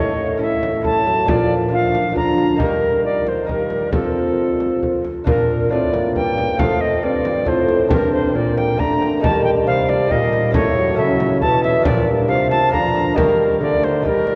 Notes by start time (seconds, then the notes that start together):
Already playing: A2 A3 C#4 E4 A4 C#5
0.37 A3 C#4 E4 A4
0.41 E5
0.63 frame drum
0.82 A3 C#4 E4 A4, frame drum
0.86 A5
1.07 F#3, frame drum
1.25 A#2 F3 A#3 D4 F4, frame drum
1.29 A#2 D5
1.69 A#3 D4 F4
1.73 F3 F5
1.95 frame drum
2.12 D3 A#3 D4 F4
2.16 D3 F3 A#5, frame drum
2.38 frame drum
2.56 D#3 A#3 D#4 G4, frame drum
2.61 G3 A#4
3.05 D5
3.27 C5, frame drum
3.45 G3 A#3 D#4 G4 A#4
3.49 frame drum
3.70 frame drum
3.91 F3 C4 F4 A4, frame drum
4.60 frame drum
4.83 frame drum
5.05 frame drum
5.24 A#2 D4 F4 A#4, frame drum
5.69 A2 C4 D4 F4 D5
5.93 A#3, frame drum
6.15 G2 G5, frame drum
6.38 frame drum
6.57 F2 A3 F4 A4 F5, frame drum
6.81 D#5
7.03 G2 C4 D5
7.25 frame drum
7.45 A2 C4 F4 A4 C5, frame drum
7.68 frame drum
7.88 G2 D4 G4 A#4, frame drum
8.13 C5
8.35 A#2 A#3 D5
8.58 G5, frame drum
8.77 D3 A3 D4 G4 A#5, frame drum
9.02 frame drum
9.20 D#3 A#3 D#4 G4 A5
9.24 G3, frame drum
9.44 G5
9.66 C3 F5
9.89 D5, frame drum
10.07 A#2 A#3 D#4 G4
10.11 A#2 G3 D#5, frame drum
10.33 frame drum
10.51 A2 C#4 E4 A4 C#5, frame drum
10.55 A2 A3
10.77 F#3
10.94 C#3 C#4 E4 A4 E5
10.99 C#3
11.20 frame drum
11.41 B2 E3 A5, frame drum
11.63 E5, frame drum
11.82 A#2 A#3 D4 F4 D5, frame drum
11.86 F3
12.08 G3
12.28 C3 F5
12.51 A5, frame drum
12.69 D3 F3 A#3 D4 F4 A#5
12.74 D3, frame drum
12.95 frame drum
13.14 D#3 G3 G4 A#4 D#5, frame drum
13.60 D3 A3 D5
13.83 C5, frame drum
14.02 D#3 G3 D#4 G4, frame drum
14.06 A#4
14.27 G3, frame drum